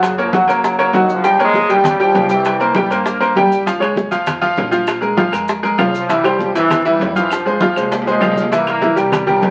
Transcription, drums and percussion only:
0.03 high bongo medium
0.03 high conga soft
0.03 high timbale medium
0.03 maracas medium
0.18 high bongo soft
0.18 high conga soft
0.18 maracas soft
0.33 high bongo medium
0.33 high conga loud
0.33 high timbale medium
0.33 low timbale medium
0.33 maracas soft
0.48 high conga soft
0.48 high timbale medium
0.48 maracas medium
0.64 high bongo medium
0.64 high conga soft
0.64 maracas medium
0.79 high bongo soft
0.79 high conga soft
0.79 high timbale medium
0.79 maracas soft
0.93 high bongo soft
0.93 low bongo medium
0.93 high conga medium
0.93 high timbale medium
0.93 low timbale medium
0.93 maracas soft
1.09 high bongo soft
1.09 maracas medium
1.24 high bongo medium
1.24 high conga soft
1.24 maracas medium
1.39 high bongo soft
1.39 high conga soft
1.39 high timbale medium
1.39 maracas soft
1.54 high bongo medium
1.54 high conga medium
1.54 low timbale medium
1.54 maracas soft
1.70 high timbale medium
1.70 maracas medium
1.84 high bongo medium
1.84 high conga soft
1.84 low conga loud
1.84 high timbale loud
1.84 maracas loud
2.00 high bongo soft
2.00 maracas soft
2.14 high bongo soft
2.14 low bongo medium
2.14 high conga medium
2.14 high timbale medium
2.14 low timbale medium
2.14 maracas soft
2.29 high bongo soft
2.29 maracas medium
2.44 high bongo medium
2.44 high conga soft
2.44 high timbale loud
2.44 maracas medium
2.60 high bongo soft
2.60 high conga soft
2.60 maracas soft
2.75 high bongo medium
2.75 high conga loud
2.75 high timbale medium
2.75 low timbale medium
2.75 maracas soft
2.90 high conga soft
2.90 high timbale loud
2.90 maracas medium
3.06 high bongo medium
3.06 high conga soft
3.06 maracas medium
3.21 high bongo soft
3.21 high conga soft
3.21 high timbale medium
3.21 maracas soft
3.36 high bongo soft
3.36 low bongo medium
3.36 high conga medium
3.36 high timbale medium
3.36 low timbale medium
3.36 maracas soft
3.52 high bongo soft
3.52 maracas medium
3.66 high bongo medium
3.66 high conga soft
3.66 maracas medium
3.81 high bongo soft
3.81 high conga soft
3.81 high timbale loud
3.81 claves medium
3.81 maracas soft
3.96 high bongo medium
3.96 high conga medium
3.96 low timbale medium
3.96 maracas soft
4.11 high conga soft
4.11 high timbale medium
4.11 maracas medium
4.26 high bongo medium
4.26 high conga soft
4.26 low conga medium
4.26 high timbale loud
4.26 claves medium
4.26 maracas medium
4.42 high bongo soft
4.42 high conga soft
4.42 maracas soft
4.57 high bongo soft
4.57 low bongo medium
4.57 high conga medium
4.57 high timbale medium
4.57 low timbale medium
4.57 maracas soft
4.72 high bongo soft
4.72 high conga medium
4.72 maracas medium
4.87 high bongo medium
4.87 high conga soft
4.87 high timbale medium
4.87 claves medium
4.87 maracas medium
5.02 high bongo soft
5.02 high conga soft
5.02 maracas soft
5.17 high bongo medium
5.17 high conga loud
5.17 high timbale medium
5.17 low timbale medium
5.17 maracas soft
5.33 high conga soft
5.33 high timbale medium
5.33 claves medium
5.33 maracas medium
5.48 high bongo medium
5.48 high conga soft
5.48 maracas medium
5.63 high bongo soft
5.63 high conga soft
5.63 high timbale medium
5.63 maracas soft
5.79 high bongo soft
5.79 low bongo medium
5.79 high conga medium
5.79 high timbale medium
5.79 low timbale medium
5.79 claves medium
5.79 maracas soft
5.94 high bongo soft
5.94 maracas medium
6.09 high bongo medium
6.09 high conga soft
6.09 maracas medium
6.24 high bongo soft
6.24 high conga soft
6.24 high timbale medium
6.24 claves medium
6.24 maracas soft
6.39 high bongo medium
6.39 high conga medium
6.39 low timbale medium
6.39 maracas soft
6.55 high conga soft
6.55 high timbale medium
6.55 maracas medium
6.70 high bongo medium
6.70 high conga soft
6.70 low conga medium
6.70 high timbale loud
6.70 claves medium
6.70 maracas medium
6.85 high bongo soft
6.85 high conga soft
6.85 maracas soft
7.00 high bongo soft
7.00 low bongo medium
7.00 high conga medium
7.00 high timbale medium
7.00 low timbale medium
7.00 maracas soft
7.15 high bongo soft
7.15 high conga medium
7.15 maracas medium
7.30 high bongo medium
7.30 high conga soft
7.30 high timbale medium
7.30 claves medium
7.30 maracas medium
7.46 high bongo soft
7.46 high conga soft
7.46 maracas soft
7.61 high bongo medium
7.61 high conga loud
7.61 maracas soft
7.76 claves medium
7.76 maracas medium
7.81 low timbale medium
7.91 high bongo medium
7.91 high conga soft
7.91 low timbale loud
7.91 maracas loud
8.02 low timbale medium
8.06 high bongo soft
8.06 high conga soft
8.06 maracas soft
8.12 low timbale medium
8.21 high bongo soft
8.21 low bongo medium
8.21 high conga medium
8.21 low timbale medium
8.21 claves medium
8.21 maracas soft
8.32 low timbale medium
8.36 high bongo soft
8.36 high conga medium
8.36 maracas medium
8.42 low timbale medium
8.51 high bongo medium
8.51 high conga soft
8.51 maracas medium
8.66 high bongo soft
8.66 high conga soft
8.66 high timbale medium
8.66 claves medium
8.66 maracas soft
8.82 high bongo medium
8.82 high conga medium
8.82 low timbale medium
8.82 maracas soft
8.97 high conga soft
8.97 high timbale medium
8.97 maracas medium
9.12 high bongo medium
9.12 high conga soft
9.12 low conga medium
9.12 high timbale medium
9.12 claves medium
9.12 maracas medium
9.27 high bongo soft
9.27 high conga soft
9.27 low conga medium
9.27 maracas soft
9.42 high bongo soft
9.42 low bongo medium
9.42 high conga medium
9.42 high timbale medium
9.42 low timbale medium
9.42 maracas soft

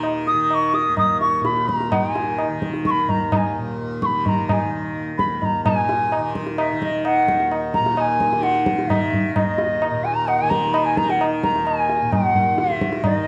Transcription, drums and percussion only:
0.03 tabla na medium
0.27 tabla te medium
0.51 tabla na medium
0.74 tabla te medium
0.97 tabla na medium
0.97 tabla ge medium
1.21 tabla te medium
1.45 tabla te medium
1.57 tabla te medium
1.69 tabla ke medium
1.80 tabla te medium
1.92 tabla na loud
1.92 tabla ge medium
2.15 tabla te medium
2.38 tabla na medium
2.62 tabla ke medium
2.74 tabla te medium
2.85 tabla ke medium
3.09 tabla tin medium
3.09 tabla ge medium
3.32 tabla na medium
3.32 tabla ge medium
4.02 tabla ke medium
4.26 tabla tin medium
4.26 tabla ge medium
4.49 tabla na medium
4.49 tabla ge medium
5.19 tabla ke medium
5.42 tabla tin medium
5.42 tabla ge medium
5.66 tabla na loud
5.66 tabla ge medium
5.89 tabla te medium
6.12 tabla na medium
6.35 tabla ke medium
6.47 tabla te medium
6.58 tabla na medium
6.82 tabla ke medium
7.05 tabla na medium
7.28 tabla ke medium
7.40 tabla te medium
7.52 tabla na medium
7.74 tabla ke medium
7.86 tabla te medium
7.97 tabla na medium
8.20 tabla ke medium
8.33 tabla te medium
8.43 tabla te medium
8.55 tabla te medium
8.66 tabla ke medium
8.79 tabla te medium
8.90 tabla na medium
8.90 tabla ge medium
9.13 tabla ge medium
9.36 tabla na loud
9.36 tabla ge loud
9.58 tabla te medium
9.82 tabla na medium
10.05 tabla te medium
10.28 tabla na medium
10.51 tabla ke medium
10.74 tabla na medium
10.97 tabla ke medium
11.09 tabla te medium
11.21 tabla na medium
11.44 tabla ke medium
11.56 tabla te medium
11.67 tabla na medium
11.89 tabla te medium
12.12 tabla na medium
12.12 tabla ge medium
12.35 tabla ge medium
12.58 tabla te medium
12.70 tabla te medium
12.81 tabla ke medium
12.93 tabla te medium
13.04 tabla na loud
13.04 tabla ge medium

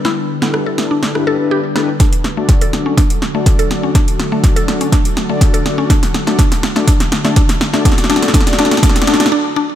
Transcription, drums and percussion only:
0.05 snare medium
0.42 snare medium
0.54 cross-stick medium
0.78 snare medium
1.03 snare medium
1.15 cross-stick medium
1.76 cross-stick medium
1.76 snare medium
2.00 kick loud
2.00 snare medium
2.00 closed hi-hat medium
2.13 closed hi-hat soft
2.24 snare medium
2.49 kick loud
2.49 snare medium
2.49 closed hi-hat medium
2.61 closed hi-hat soft
2.73 snare medium
2.97 kick loud
2.97 snare medium
2.97 closed hi-hat medium
3.10 closed hi-hat soft
3.22 snare medium
3.46 kick loud
3.46 snare medium
3.46 closed hi-hat medium
3.59 closed hi-hat soft
3.71 snare medium
3.95 kick loud
3.95 snare medium
3.95 closed hi-hat medium
4.08 closed hi-hat soft
4.20 snare medium
4.44 kick loud
4.44 snare medium
4.44 closed hi-hat medium
4.57 closed hi-hat soft
4.68 snare medium
4.81 closed hi-hat soft
4.92 kick loud
4.92 snare medium
4.92 closed hi-hat medium
5.05 closed hi-hat soft
5.17 snare medium
5.41 kick loud
5.41 snare medium
5.41 closed hi-hat medium
5.54 closed hi-hat soft
5.66 snare medium
5.90 kick loud
5.90 snare medium
5.90 closed hi-hat medium
6.03 snare medium
6.03 closed hi-hat soft
6.14 snare medium
6.27 snare medium
6.39 kick loud
6.39 snare medium
6.39 closed hi-hat medium
6.52 snare medium
6.52 closed hi-hat soft
6.63 snare loud
6.76 snare medium
6.88 kick loud
6.88 snare medium
6.88 closed hi-hat medium
7.00 snare medium
7.00 closed hi-hat soft
7.12 snare loud
7.25 snare medium
7.36 kick loud
7.36 snare medium
7.36 closed hi-hat medium
7.49 snare medium
7.49 closed hi-hat soft
7.61 snare loud
7.74 snare medium
7.85 kick loud
7.85 snare loud
7.85 closed hi-hat medium
7.92 snare medium
7.98 snare medium
7.98 closed hi-hat soft
8.04 snare medium
8.10 snare loud
8.16 snare medium
8.23 snare medium
8.23 closed hi-hat soft
8.28 snare medium
8.34 kick loud
8.34 snare loud
8.34 closed hi-hat medium
8.41 snare medium
8.47 snare medium
8.47 closed hi-hat soft
8.53 snare medium
8.59 snare loud
8.65 snare medium
8.71 snare loud
8.71 closed hi-hat soft
8.77 snare medium
8.83 kick loud
8.83 snare loud
8.83 closed hi-hat medium
8.89 snare medium
8.96 snare medium
8.96 closed hi-hat soft
9.02 snare loud
9.07 snare loud
9.14 snare medium
9.20 snare loud
9.20 closed hi-hat soft
9.26 snare loud

